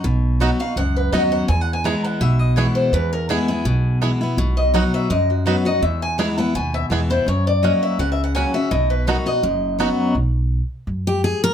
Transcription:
0.04 upright bass B1, steel-string acoustic guitar B2
0.40 steel-string acoustic guitar F#3 B3 D#4 F#4, five-string banjo B3 D#4 F#4
0.60 steel-string acoustic guitar D#4 F#4 F5
0.76 upright bass C#2, steel-string acoustic guitar F#2 F#5
0.96 steel-string acoustic guitar B4
1.12 upright bass D#2, steel-string acoustic guitar F#3 B3 D#4 F#4 D#5, five-string banjo B3 D#4 F#4
1.32 steel-string acoustic guitar F#5
1.48 steel-string acoustic guitar E2 G#5, upright bass E2
1.61 steel-string acoustic guitar F#5
1.73 steel-string acoustic guitar G#5
1.84 steel-string acoustic guitar E3 G#3 B3 E4 A#5, five-string banjo B3 E4 G#4
2.05 steel-string acoustic guitar F#5
2.20 upright bass B1, steel-string acoustic guitar B2 E5
2.39 steel-string acoustic guitar D#5
2.56 steel-string acoustic guitar E3 G#3 B3 E4 C#5, five-string banjo B3 E4 G#4
2.75 steel-string acoustic guitar C5
2.92 upright bass E2, steel-string acoustic guitar E2 B4
3.13 steel-string acoustic guitar A#4
3.29 steel-string acoustic guitar E3 G#3 B3 E4 G#4, five-string banjo B3 E4 G#4
3.48 steel-string acoustic guitar B3 E4 G#4
3.65 upright bass B1, steel-string acoustic guitar B2
4.01 steel-string acoustic guitar E3 G#3 B3 E4, five-string banjo B3 E4 G#4
4.21 steel-string acoustic guitar B3 E4
4.37 upright bass B1, steel-string acoustic guitar B2
4.57 steel-string acoustic guitar D#5
4.74 steel-string acoustic guitar F#3 B3 D#4 F#4 F#5, five-string banjo B3 D#4 F#4
4.94 steel-string acoustic guitar E5
5.10 upright bass F#2, steel-string acoustic guitar F#2 D#5
5.30 steel-string acoustic guitar F#4
5.46 steel-string acoustic guitar F#3 B3 D#4 F#4 B4, five-string banjo B3 D#4 F#4
5.65 steel-string acoustic guitar D#4 F#4 D#5
5.82 upright bass E2, steel-string acoustic guitar E2 E5
6.02 steel-string acoustic guitar G#5
6.18 steel-string acoustic guitar E3 G#3 B3 E4 A#5, five-string banjo B3 E4 G#4
6.38 steel-string acoustic guitar B3 E4 F#5
6.55 upright bass D#2, steel-string acoustic guitar B2 G#5
6.74 steel-string acoustic guitar E5
6.90 upright bass E2, steel-string acoustic guitar E3 G#3 B3 E4, five-string banjo B3 E4 G#4
7.10 steel-string acoustic guitar B3 E4 C5
7.26 upright bass F#2, steel-string acoustic guitar F#2 C#5
7.47 steel-string acoustic guitar D5
7.63 steel-string acoustic guitar F#3 A#3 C#4 F#4 D#5, five-string banjo C#4 F#4
7.83 steel-string acoustic guitar E5
7.99 upright bass C#2, steel-string acoustic guitar C#3 F#5
8.12 steel-string acoustic guitar E5
8.24 steel-string acoustic guitar F#5
8.35 steel-string acoustic guitar F#3 A#3 C#4 F#4 G#5, five-string banjo C#4 F#4
8.54 steel-string acoustic guitar C#4 F#4 E5
8.71 upright bass B1, steel-string acoustic guitar B2 D#5
8.90 steel-string acoustic guitar B4
9.07 steel-string acoustic guitar F#3 B3 D#4 F#4 A#4, five-string banjo B3 D#4 F#4
9.26 steel-string acoustic guitar D#4 F#4 D#5
9.43 upright bass F#1, steel-string acoustic guitar F#2
9.79 steel-string acoustic guitar F#3 B3 D#4 F#4, five-string banjo B3 D#4 F#4
10.15 upright bass B1
10.87 upright bass F#2
11.07 steel-string acoustic guitar G4
11.24 steel-string acoustic guitar G#4
11.44 steel-string acoustic guitar A#4

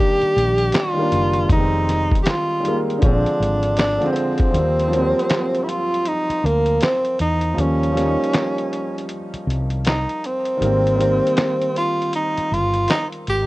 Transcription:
Already playing: felt piano D#3 G3 A#3 D4 D5, tenor saxophone G4
0.22 muted fretless electric bass stroke, closed hi-hat
0.36 fretless electric bass A#1, closed hi-hat
0.58 closed hi-hat
0.72 snare, clap, closed hi-hat
0.76 tenor saxophone F4
0.94 felt piano D#3 G3
0.99 felt piano A#3 D4
1.12 fretless electric bass F#1, closed hi-hat
1.33 closed hi-hat
1.46 fretless electric bass F1, felt piano D#3 G3, kick
1.50 felt piano G#3 B3, tenor saxophone D#4, closed hi-hat
1.60 felt piano C4
1.89 snare, closed hi-hat
2.12 kick, closed hi-hat
2.23 tenor saxophone G4, snare, clap, closed hi-hat
2.29 tenor saxophone F4
2.60 felt piano D#3 G3
2.65 felt piano G#3 A#3, closed hi-hat
2.90 closed hi-hat
2.98 felt piano D3 F3, closed hi-hat
3.03 fretless electric bass A#1, felt piano G#3 C4, tenor saxophone D4, kick
3.26 muted fretless electric bass stroke, closed hi-hat
3.40 fretless electric bass G#1, closed hi-hat
3.63 closed hi-hat
3.77 tenor saxophone D4, snare, clap, closed hi-hat
3.98 felt piano D3 F3, closed hi-hat
4.03 felt piano G#3 C4
4.12 tenor saxophone B3, closed hi-hat
4.17 tenor saxophone C4
4.38 kick, closed hi-hat
4.50 fretless electric bass D#2, felt piano F3 G3, closed hi-hat
4.55 felt piano A#3 C4
4.79 closed hi-hat
4.88 felt piano F3 F#3
4.93 felt piano A#3 C4, closed hi-hat
4.97 felt piano G3
5.19 closed hi-hat
5.29 snare, clap, closed hi-hat
5.55 closed hi-hat
5.64 tenor saxophone E4
5.68 tenor saxophone F4, closed hi-hat
5.94 closed hi-hat
6.05 tenor saxophone D#4, closed hi-hat
6.30 muted fretless electric bass stroke, closed hi-hat
6.44 fretless electric bass D2, tenor saxophone A#3, closed hi-hat
6.66 closed hi-hat
6.81 tenor saxophone C4, snare, clap, closed hi-hat
7.05 closed hi-hat
7.19 fretless electric bass E2, tenor saxophone D#4, closed hi-hat
7.41 closed hi-hat
7.54 fretless electric bass D#2, felt piano F3 G3
7.58 felt piano A#3 C#4, tenor saxophone C#4, closed hi-hat
7.83 closed hi-hat
7.92 felt piano F3 G3
7.96 felt piano A#3 C#4, snare, closed hi-hat
8.06 felt piano D#4
8.24 closed hi-hat
8.33 snare, clap, closed hi-hat
8.58 closed hi-hat
8.73 closed hi-hat
8.98 closed hi-hat
9.09 closed hi-hat
9.34 muted fretless electric bass stroke, closed hi-hat
9.47 fretless electric bass C2, closed hi-hat
9.70 closed hi-hat
9.85 tenor saxophone D#4, snare, clap, closed hi-hat
10.09 closed hi-hat
10.24 tenor saxophone C4, closed hi-hat
10.45 closed hi-hat
10.57 felt piano D#3 G3
10.61 fretless electric bass G#1, felt piano A#3 C4, closed hi-hat
10.87 closed hi-hat
10.95 felt piano D#3 G3
11.00 felt piano A#3 C4, closed hi-hat
11.27 closed hi-hat
11.37 snare, clap, closed hi-hat
11.62 closed hi-hat
11.76 tenor saxophone F4, closed hi-hat
12.02 closed hi-hat
12.13 tenor saxophone D#4, closed hi-hat
12.37 muted fretless electric bass stroke, closed hi-hat
12.52 fretless electric bass G1, tenor saxophone F4, closed hi-hat
12.74 closed hi-hat
12.88 tenor saxophone D#4, snare, clap, closed hi-hat
13.12 closed hi-hat
13.27 fretless electric bass G#1, tenor saxophone G4, closed hi-hat

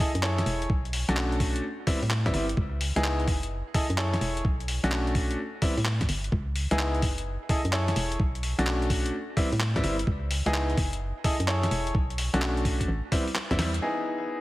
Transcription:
0.15 fm bass F#2, closed hi-hat
0.23 grand piano E4 G#4 A4 C#5, clap
0.38 snare, closed hi-hat
0.46 fm bass E1, open hi-hat
0.62 closed hi-hat
0.70 fm bass B1, kick
0.85 closed hi-hat
0.93 open hi-hat
1.09 fm bass B1, grand piano A3 C#4 D4 F#4, snare, closed hi-hat
1.17 clap
1.32 closed hi-hat
1.40 kick, open hi-hat
1.56 closed hi-hat
1.87 grand piano G3 B3 C4 E4, kick, open hi-hat
2.02 fm bass A2, open hi-hat
2.10 clap
2.26 grand piano G3 B3 C4 E4, kick, snare, closed hi-hat
2.34 fm bass G1, grand piano G3 B3 C4 E4, open hi-hat
2.49 closed hi-hat
2.57 fm bass C#2, kick
2.81 open hi-hat
2.96 fm bass C#2, grand piano B3 D#4 E4 G#4, snare, closed hi-hat
3.04 clap
3.20 closed hi-hat
3.27 fm bass F#1, kick, open hi-hat
3.43 closed hi-hat
3.74 grand piano E4 G#4 A4 D#5, kick, open hi-hat
3.90 fm bass F#2, closed hi-hat
3.98 grand piano E4 G#4 A4 C#5, clap
4.14 snare, closed hi-hat
4.21 fm bass E1, open hi-hat
4.37 closed hi-hat
4.45 fm bass B1, kick
4.60 closed hi-hat
4.68 open hi-hat
4.84 fm bass B1, grand piano A3 C#4 D4 F#4, snare, closed hi-hat
4.92 clap
5.07 closed hi-hat
5.15 kick, open hi-hat
5.31 closed hi-hat
5.62 grand piano G3 B3 C4 E4, kick, open hi-hat
5.77 fm bass A2, open hi-hat
5.85 clap
6.01 kick, snare, closed hi-hat
6.09 fm bass G1, open hi-hat
6.24 closed hi-hat
6.32 fm bass C#2, kick
6.56 open hi-hat
6.71 fm bass C#2, grand piano B3 D#4 E4 G#4, snare, closed hi-hat
6.79 clap
6.95 closed hi-hat
7.02 fm bass F#1, kick, open hi-hat
7.18 closed hi-hat
7.49 grand piano E4 G#4 A4 D#5, kick, open hi-hat
7.65 fm bass F#2, closed hi-hat
7.73 grand piano E4 G#4 A4 C#5, clap
7.88 snare, closed hi-hat
7.96 fm bass E1, open hi-hat
8.12 closed hi-hat
8.20 fm bass B1, kick
8.35 closed hi-hat
8.43 open hi-hat
8.59 fm bass B1, grand piano A3 C#4 D4 F#4, snare, closed hi-hat
8.67 clap
8.82 closed hi-hat
8.90 kick, open hi-hat
9.06 closed hi-hat
9.37 grand piano G3 B3 C4 E4, kick, open hi-hat
9.52 fm bass A2, open hi-hat
9.60 clap
9.76 grand piano G3 B3 C4 E4, kick, snare, closed hi-hat
9.84 fm bass G1, grand piano G3 B3 C4 E4, open hi-hat
9.99 closed hi-hat
10.07 fm bass C#2, kick
10.31 open hi-hat
10.46 fm bass C#2, grand piano B3 D#4 E4 G#4, snare, closed hi-hat
10.54 clap
10.70 closed hi-hat
10.77 fm bass F#1, kick, open hi-hat
10.93 closed hi-hat
11.24 grand piano E4 G#4 A4 D#5, kick, open hi-hat
11.40 fm bass F#2, closed hi-hat
11.48 grand piano E4 G#4 A4 C#5, clap
11.63 snare, closed hi-hat
11.71 fm bass E1, open hi-hat
11.87 closed hi-hat
11.95 fm bass B1, kick
12.10 closed hi-hat
12.18 open hi-hat
12.34 fm bass B1, grand piano A3 C#4 D4 F#4, snare, closed hi-hat
12.42 clap
12.57 closed hi-hat
12.65 kick, open hi-hat
12.81 kick, closed hi-hat
12.88 fm bass A1
13.12 grand piano G3 B3 C4 E4, kick, open hi-hat
13.28 open hi-hat
13.35 clap
13.51 fm bass E2, grand piano G3 B3 C4 E4, kick, snare, closed hi-hat
13.59 grand piano G3 B3 C4 E4, snare, open hi-hat
13.74 closed hi-hat
13.82 grand piano B3 D#4 E4 G#4

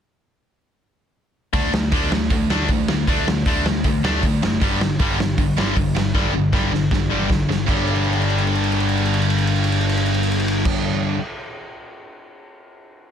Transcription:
1.53 picked electric bass D2, overdriven electric guitar D3 A3 D4, kick, open hi-hat
1.73 picked electric bass D2, overdriven electric guitar D3 A3, snare
1.92 picked electric bass D2, overdriven electric guitar D3 A3 D4, kick, open hi-hat
2.12 overdriven electric guitar D3 A3, snare
2.30 picked electric bass D2, overdriven electric guitar D3 A3, kick, open hi-hat
2.50 overdriven electric guitar D3 A3 D4, snare
2.68 picked electric bass D2, overdriven electric guitar D3 A3, kick, open hi-hat
2.88 overdriven electric guitar D3 A3, snare
3.07 picked electric bass D2, overdriven electric guitar D3 A3 D4, kick, open hi-hat
3.27 overdriven electric guitar D3 A3, snare
3.46 picked electric bass D2, overdriven electric guitar D3 A3 D4, kick, open hi-hat
3.65 picked electric bass D2, overdriven electric guitar D3 A3, snare
3.84 picked electric bass D2, overdriven electric guitar D3 A3, kick, open hi-hat
4.04 picked electric bass D2, overdriven electric guitar D3 A3 D4, snare
4.23 picked electric bass D2, overdriven electric guitar D3 A3, kick, open hi-hat
4.43 picked electric bass F#1, overdriven electric guitar D3 A3, snare
4.61 picked electric bass G1, overdriven electric guitar G2 D3 G3, kick, open hi-hat
4.81 picked electric bass G1, overdriven electric guitar G2 D3, snare
5.00 picked electric bass G1, overdriven electric guitar G2 D3 G3, kick, open hi-hat
5.20 overdriven electric guitar G2 D3, snare
5.38 picked electric bass G1, overdriven electric guitar G2 D3, kick, open hi-hat
5.58 overdriven electric guitar G2 D3 G3, snare
5.76 picked electric bass G1, overdriven electric guitar G2 D3, kick, open hi-hat
5.96 overdriven electric guitar G2 D3, snare
6.14 picked electric bass G1, overdriven electric guitar G2 D3 G3, kick, snare
6.34 overdriven electric guitar G2 D3
6.52 picked electric bass G1, overdriven electric guitar G2 D3 G3, kick, snare
6.72 picked electric bass G1, overdriven electric guitar G2 D3, snare
6.91 picked electric bass G1, overdriven electric guitar G2 D3, kick, snare
7.10 picked electric bass G1, overdriven electric guitar G2 D3 G3
7.29 picked electric bass G1, overdriven electric guitar G2 D3, kick, snare
7.49 picked electric bass G1, overdriven electric guitar G2 D3, snare
7.67 picked electric bass G1, overdriven electric guitar G2 D3 G3, kick, crash
7.87 crash
7.96 ride
8.05 crash
8.13 ride
8.22 crash
8.30 ride
8.38 crash
8.47 ride
8.55 crash
8.64 ride
8.72 crash
8.80 ride
8.89 crash
8.97 ride
9.06 crash
9.14 ride
9.22 crash
9.30 ride
9.38 crash
9.47 ride
9.56 crash
9.64 ride
9.72 crash
9.81 ride
9.89 crash
9.97 ride
10.06 crash
10.14 ride
10.23 crash
10.32 ride
10.40 crash
10.48 ride
10.65 kick, crash

